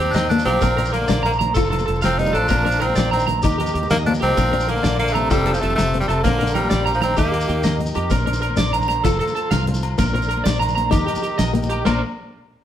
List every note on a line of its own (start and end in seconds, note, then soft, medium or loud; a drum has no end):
0.00 0.14 D#2 medium
0.00 0.12 G4 medium
0.00 closed hi-hat soft
0.06 low conga medium
0.10 0.16 F3 medium
0.10 0.29 C4 medium
0.10 0.15 D4 medium
0.10 shekere medium
0.14 0.43 D#2 medium
0.14 0.30 D#3 medium
0.14 0.27 D#5 medium
0.14 snare medium
0.14 closed hi-hat medium
0.14 high conga medium
0.14 low agogo medium
0.29 0.45 F3 medium
0.29 0.48 A#3 medium
0.29 0.45 D4 medium
0.29 closed hi-hat soft
0.29 low conga medium
0.29 shekere soft
0.39 shekere medium
0.45 0.61 B1 medium
0.45 0.90 F3 medium
0.45 0.86 C4 medium
0.45 0.59 G4 medium
0.45 closed hi-hat soft
0.45 low conga medium
0.45 low agogo medium
0.61 1.05 A#1 medium
0.61 0.71 C4 medium
0.61 1.54 A#4 medium
0.61 0.74 A#4 medium
0.61 3.40 C5 medium
0.61 1.54 D5 medium
0.61 kick medium
0.61 closed hi-hat medium
0.61 high conga medium
0.61 low conga medium
0.61 low agogo medium
0.61 shekere medium
0.77 0.95 D4 medium
0.77 0.90 A#4 medium
0.77 closed hi-hat medium
0.85 0.95 D#3 soft
0.85 0.94 C4 medium
0.85 shekere medium
0.93 1.25 D3 medium
0.93 1.24 A#3 medium
0.93 1.05 A#4 medium
0.93 closed hi-hat medium
0.93 low conga medium
0.93 low agogo medium
1.01 high conga medium
1.01 low conga soft
1.01 shekere soft
1.08 1.52 A#1 medium
1.08 1.26 D4 medium
1.08 1.21 D5 medium
1.08 snare medium
1.08 closed hi-hat medium
1.08 shekere medium
1.17 low conga medium
1.23 1.33 D3 medium
1.23 1.32 A#3 medium
1.23 1.36 A#5 medium
1.23 closed hi-hat medium
1.23 low conga soft
1.23 low agogo medium
1.33 shekere medium
1.39 1.52 A#5 medium
1.39 closed hi-hat medium
1.39 high conga loud
1.39 low conga medium
1.54 1.85 F1 medium
1.54 2.48 F4 medium
1.54 1.73 F4 medium
1.54 1.67 A4 medium
1.54 2.48 A4 medium
1.54 kick medium
1.54 closed hi-hat medium
1.54 low agogo medium
1.54 shekere medium
1.64 shekere soft
1.70 1.83 A4 medium
1.70 closed hi-hat soft
1.70 low conga medium
1.70 low agogo medium
1.79 high conga medium
1.79 shekere medium
1.86 2.02 F1 medium
1.86 1.99 A4 medium
1.86 closed hi-hat medium
1.94 low conga medium
1.94 shekere soft
2.02 2.32 F1 medium
2.02 2.20 C4 medium
2.02 2.15 F5 medium
2.02 snare medium
2.02 closed hi-hat medium
2.02 low agogo medium
2.02 shekere medium
2.06 2.22 F3 medium
2.19 2.38 G3 medium
2.19 2.37 C4 medium
2.19 2.36 D#4 medium
2.19 closed hi-hat soft
2.19 high conga medium
2.25 low conga medium
2.25 shekere medium
2.33 2.49 A1 medium
2.33 2.82 F3 medium
2.33 2.83 D4 loud
2.33 2.46 A4 medium
2.33 closed hi-hat soft
2.33 low agogo medium
2.33 shekere soft
2.48 2.93 A#1 medium
2.48 2.59 C4 medium
2.48 3.43 D4 medium
2.48 2.61 A#4 medium
2.48 4.36 A#4 medium
2.48 kick medium
2.48 closed hi-hat medium
2.48 high conga medium
2.48 low conga medium
2.48 low agogo medium
2.48 shekere medium
2.65 2.82 D4 medium
2.65 2.77 A#4 medium
2.65 closed hi-hat soft
2.71 low conga soft
2.71 shekere medium
2.80 3.13 F3 medium
2.80 3.12 C4 medium
2.80 2.93 A#4 medium
2.80 closed hi-hat soft
2.80 low conga medium
2.80 low agogo medium
2.87 high conga medium
2.87 low conga soft
2.87 shekere soft
2.95 3.40 A#1 medium
2.95 3.15 D4 medium
2.95 3.08 D5 medium
2.95 snare medium
2.95 closed hi-hat medium
2.95 shekere medium
3.05 low conga medium
3.11 3.27 D#3 medium
3.11 3.27 C4 medium
3.11 3.24 A#5 medium
3.11 closed hi-hat medium
3.11 low conga soft
3.11 low agogo medium
3.19 shekere medium
3.27 3.40 A#5 medium
3.27 closed hi-hat medium
3.27 high conga medium
3.27 low conga loud
3.42 3.72 D#2 medium
3.42 4.37 D#4 medium
3.42 3.61 D#4 medium
3.42 3.56 G4 medium
3.42 4.37 G4 medium
3.42 kick medium
3.42 closed hi-hat medium
3.42 low agogo medium
3.42 shekere medium
3.51 shekere soft
3.58 3.71 G4 medium
3.58 closed hi-hat medium
3.58 low conga medium
3.58 low agogo medium
3.66 high conga medium
3.66 shekere medium
3.74 3.89 D#2 medium
3.74 3.87 G4 medium
3.74 closed hi-hat medium
3.83 low conga medium
3.83 shekere soft
3.90 4.19 D#2 medium
3.90 3.98 D#3 medium
3.90 3.98 A#3 loud
3.90 4.03 D#5 medium
3.90 snare medium
3.90 closed hi-hat medium
3.90 low agogo medium
3.90 shekere medium
4.06 4.14 F3 medium
4.06 4.24 A#3 medium
4.06 4.13 D4 medium
4.06 closed hi-hat soft
4.06 high conga medium
4.14 low conga medium
4.14 shekere medium
4.21 4.36 C2 medium
4.21 4.70 F3 medium
4.21 4.71 C4 loud
4.21 4.33 G4 medium
4.21 closed hi-hat soft
4.21 low agogo medium
4.21 shekere soft
4.37 4.80 A#1 medium
4.37 4.46 C4 medium
4.37 5.30 D4 medium
4.37 5.30 A#4 medium
4.37 4.50 A#4 medium
4.37 5.30 C5 medium
4.37 kick medium
4.37 closed hi-hat medium
4.37 high conga medium
4.37 low conga medium
4.37 low agogo medium
4.37 shekere medium
4.52 4.70 D4 medium
4.52 4.65 A#4 medium
4.52 closed hi-hat soft
4.60 low conga soft
4.60 shekere medium
4.68 4.99 D3 medium
4.68 4.99 A#3 medium
4.68 4.81 A#4 medium
4.68 closed hi-hat soft
4.68 low conga medium
4.68 low agogo medium
4.76 high conga medium
4.76 low conga soft
4.76 shekere soft
4.83 5.27 A#1 medium
4.83 5.00 D4 medium
4.83 4.96 D5 medium
4.83 snare medium
4.83 closed hi-hat medium
4.83 shekere medium
4.92 low conga medium
4.99 5.18 D3 medium
4.99 5.15 A#3 medium
4.99 5.12 F5 medium
4.99 closed hi-hat soft
4.99 low conga soft
4.99 low agogo medium
5.08 shekere medium
5.13 5.32 C3 medium
5.13 5.32 A3 medium
5.13 5.27 A#5 medium
5.13 closed hi-hat soft
5.13 high conga medium
5.13 low conga medium
5.30 5.59 F1 loud
5.30 5.57 C3 medium
5.30 5.55 G3 medium
5.30 6.23 F4 medium
5.30 5.48 F4 medium
5.30 5.43 A4 medium
5.30 6.24 A4 medium
5.30 7.16 C5 medium
5.30 kick medium
5.30 closed hi-hat medium
5.30 low agogo medium
5.30 shekere medium
5.38 shekere soft
5.46 5.59 A4 medium
5.46 closed hi-hat soft
5.46 low conga medium
5.46 low agogo medium
5.53 5.64 A2 medium
5.53 5.61 F3 medium
5.53 high conga medium
5.53 shekere medium
5.60 5.77 F1 medium
5.60 5.78 C3 medium
5.60 5.75 A3 medium
5.60 5.74 A4 medium
5.60 closed hi-hat soft
5.70 low conga medium
5.70 shekere soft
5.76 6.06 F1 medium
5.76 6.00 C3 medium
5.76 5.98 A3 loud
5.76 muted clean electric guitar stroke medium
5.76 snare medium
5.76 closed hi-hat medium
5.76 low agogo medium
5.76 shekere medium
5.94 6.11 C4 medium
5.94 closed hi-hat soft
6.00 6.09 A#2 medium
6.00 6.07 G3 medium
6.00 low conga medium
6.00 shekere medium
6.08 6.23 F1 medium
6.08 6.24 C3 medium
6.08 6.23 A3 medium
6.08 6.21 A4 medium
6.08 closed hi-hat soft
6.08 low agogo medium
6.08 shekere soft
6.23 6.68 A#1 medium
6.23 6.54 D3 medium
6.23 6.53 A#3 medium
6.23 6.34 C4 medium
6.23 7.17 D4 medium
6.23 6.37 A#4 medium
6.23 7.17 A#4 medium
6.23 kick medium
6.23 closed hi-hat medium
6.23 high conga medium
6.23 low conga medium
6.23 low agogo medium
6.23 shekere medium
6.39 6.52 A#4 medium
6.39 closed hi-hat medium
6.43 6.59 D4 medium
6.43 low conga soft
6.43 shekere medium
6.54 6.92 A#2 medium
6.54 6.91 G3 medium
6.54 6.67 A#4 medium
6.54 closed hi-hat medium
6.54 low conga loud
6.54 low agogo medium
6.63 high conga medium
6.63 low conga soft
6.63 shekere soft
6.70 7.15 A#1 medium
6.70 6.83 D5 medium
6.70 snare medium
6.70 closed hi-hat medium
6.70 shekere medium
6.74 6.90 D4 medium
6.86 6.99 A#5 medium
6.86 closed hi-hat medium
6.86 low conga soft
6.86 low agogo medium
6.94 7.03 A2 medium
6.94 7.02 F3 medium
6.94 shekere medium
7.02 7.17 D#3 medium
7.02 7.18 C4 medium
7.02 7.14 A#5 medium
7.02 snare soft
7.02 closed hi-hat medium
7.02 high conga loud
7.02 low conga loud
7.11 low conga soft
7.17 7.47 D#2 medium
7.17 7.77 D#3 medium
7.17 7.77 A#3 medium
7.17 8.11 D#4 medium
7.17 7.35 D#4 medium
7.17 7.30 G4 medium
7.17 8.11 G4 medium
7.17 8.08 A#4 medium
7.17 kick medium
7.17 closed hi-hat medium
7.17 low agogo medium
7.17 shekere medium
7.25 low conga soft
7.25 shekere soft
7.32 7.45 G4 medium
7.32 closed hi-hat soft
7.32 high conga soft
7.32 low agogo medium
7.40 shekere medium
7.48 7.64 D#2 medium
7.48 7.61 G4 medium
7.48 closed hi-hat soft
7.48 high conga medium
7.63 7.94 D#2 medium
7.63 7.77 D#5 medium
7.63 snare medium
7.63 closed hi-hat medium
7.63 high conga medium
7.63 low agogo medium
7.63 shekere medium
7.80 7.97 A#3 medium
7.80 closed hi-hat soft
7.80 low conga medium
7.86 shekere medium
7.93 8.11 F2 medium
7.93 8.08 G4 medium
7.93 closed hi-hat soft
7.93 low conga medium
7.93 low agogo medium
7.93 shekere soft
8.09 8.54 A#1 medium
8.09 8.20 C4 medium
8.09 9.04 D4 medium
8.09 9.03 A#4 medium
8.09 8.23 A#4 medium
8.09 10.89 C5 medium
8.09 kick medium
8.09 closed hi-hat medium
8.09 high conga medium
8.09 low conga medium
8.09 low agogo medium
8.09 shekere medium
8.18 shekere soft
8.26 8.44 D4 medium
8.26 8.39 A#4 medium
8.26 closed hi-hat medium
8.33 low conga medium
8.33 shekere medium
8.42 8.55 A#4 medium
8.42 closed hi-hat soft
8.42 low agogo medium
8.50 high conga medium
8.50 low conga soft
8.57 9.01 A#1 medium
8.57 8.74 D4 medium
8.57 8.70 D5 medium
8.57 snare medium
8.57 closed hi-hat medium
8.57 low conga medium
8.57 shekere loud
8.65 shekere soft
8.73 8.86 A#5 medium
8.73 closed hi-hat medium
8.73 low agogo medium
8.80 low conga medium
8.80 shekere medium
8.88 9.02 A#5 medium
8.88 snare soft
8.88 closed hi-hat medium
8.88 high conga loud
8.96 low conga soft
9.04 9.19 F1 medium
9.04 9.98 F4 medium
9.04 9.22 F4 medium
9.04 9.17 A4 medium
9.04 9.98 A4 medium
9.04 kick medium
9.04 closed hi-hat medium
9.04 low conga loud
9.04 low agogo medium
9.04 shekere medium
9.19 9.32 A4 medium
9.19 closed hi-hat medium
9.19 low agogo medium
9.19 shekere soft
9.27 high conga medium
9.27 low conga medium
9.27 shekere medium
9.35 9.48 A4 medium
9.35 closed hi-hat soft
9.35 low conga soft
9.35 shekere soft
9.51 9.95 C2 medium
9.51 9.64 F5 medium
9.51 snare medium
9.51 closed hi-hat medium
9.51 low conga loud
9.51 low agogo medium
9.51 shekere loud
9.60 low conga soft
9.67 9.85 C4 medium
9.67 closed hi-hat soft
9.67 high conga medium
9.74 low conga medium
9.74 shekere medium
9.83 closed hi-hat soft
9.83 low agogo medium
9.98 10.42 A#1 loud
9.98 10.07 A#3 medium
9.98 10.91 D4 medium
9.98 10.11 A#4 medium
9.98 11.84 A#4 medium
9.98 kick medium
9.98 closed hi-hat medium
9.98 high conga medium
9.98 low conga loud
9.98 low agogo medium
9.98 shekere medium
10.06 shekere soft
10.14 10.31 C4 medium
10.14 10.27 A#4 medium
10.14 closed hi-hat soft
10.22 low conga medium
10.22 shekere medium
10.29 10.42 A#4 medium
10.29 closed hi-hat soft
10.29 low agogo medium
10.37 high conga medium
10.37 low conga soft
10.44 10.89 A#1 medium
10.44 10.57 D5 medium
10.44 snare medium
10.44 closed hi-hat medium
10.44 low conga loud
10.44 shekere medium
10.54 shekere soft
10.60 10.73 A#5 medium
10.60 closed hi-hat medium
10.60 low agogo medium
10.68 low conga medium
10.68 shekere medium
10.75 10.89 A#5 medium
10.75 closed hi-hat medium
10.75 high conga loud
10.85 low conga soft
10.91 11.07 D#2 medium
10.91 11.08 D#4 medium
10.91 11.85 D#4 medium
10.91 11.84 G4 medium
10.91 11.04 G4 medium
10.91 kick medium
10.91 closed hi-hat medium
10.91 low conga loud
10.91 low agogo medium
10.91 shekere medium
11.07 11.20 G4 medium
11.07 closed hi-hat medium
11.07 low agogo medium
11.07 shekere soft
11.15 high conga medium
11.15 low conga medium
11.15 shekere medium
11.23 11.36 G4 medium
11.23 closed hi-hat medium
11.23 low conga soft
11.23 shekere soft
11.38 11.82 A#1 medium
11.38 11.51 D#5 medium
11.38 snare medium
11.38 closed hi-hat medium
11.38 low conga medium
11.38 low agogo medium
11.38 shekere medium
11.54 11.71 A#3 medium
11.54 closed hi-hat medium
11.54 high conga medium
11.63 low conga medium
11.63 shekere medium
11.69 11.82 G4 medium
11.69 closed hi-hat medium
11.69 low agogo medium
11.85 12.01 A#1 loud
11.85 11.96 A#3 medium
11.85 12.00 D4 medium
11.85 12.00 A#4 medium
11.85 12.01 A#4 medium
11.85 12.00 C5 medium
11.85 12.00 D5 medium
11.85 snare medium
11.85 high conga medium
11.85 low agogo loud
11.85 shekere medium